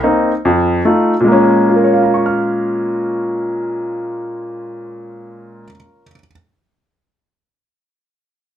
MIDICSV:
0, 0, Header, 1, 2, 480
1, 0, Start_track
1, 0, Key_signature, -5, "minor"
1, 0, Tempo, 411523
1, 1472, Time_signature, 4, 2, 24, 8
1, 9989, End_track
2, 0, Start_track
2, 0, Title_t, "Grand piano"
2, 0, Program_c, 0, 0
2, 35, Note_on_c, 0, 58, 45
2, 43, Note_on_c, 0, 63, 53
2, 46, Note_on_c, 0, 60, 44
2, 359, Note_off_c, 0, 58, 0
2, 363, Note_off_c, 0, 63, 0
2, 364, Note_off_c, 0, 60, 0
2, 527, Note_on_c, 0, 41, 68
2, 934, Note_off_c, 0, 41, 0
2, 993, Note_on_c, 0, 57, 48
2, 998, Note_on_c, 0, 63, 38
2, 1000, Note_on_c, 0, 65, 46
2, 1318, Note_off_c, 0, 57, 0
2, 1320, Note_off_c, 0, 63, 0
2, 1321, Note_off_c, 0, 65, 0
2, 1404, Note_on_c, 0, 46, 57
2, 1451, Note_on_c, 0, 56, 52
2, 1492, Note_on_c, 0, 58, 50
2, 1539, Note_on_c, 0, 61, 62
2, 1968, Note_on_c, 0, 65, 39
2, 2051, Note_on_c, 0, 70, 39
2, 2149, Note_on_c, 0, 73, 35
2, 2258, Note_on_c, 0, 77, 36
2, 2368, Note_on_c, 0, 82, 31
2, 2497, Note_on_c, 0, 85, 31
2, 2635, Note_on_c, 0, 89, 31
2, 6560, Note_off_c, 0, 46, 0
2, 6607, Note_off_c, 0, 56, 0
2, 6648, Note_off_c, 0, 58, 0
2, 6695, Note_off_c, 0, 61, 0
2, 7022, Note_off_c, 0, 65, 0
2, 7064, Note_off_c, 0, 70, 0
2, 7112, Note_off_c, 0, 73, 0
2, 7167, Note_off_c, 0, 77, 0
2, 7222, Note_off_c, 0, 82, 0
2, 7287, Note_off_c, 0, 85, 0
2, 7356, Note_off_c, 0, 89, 0
2, 9989, End_track
0, 0, End_of_file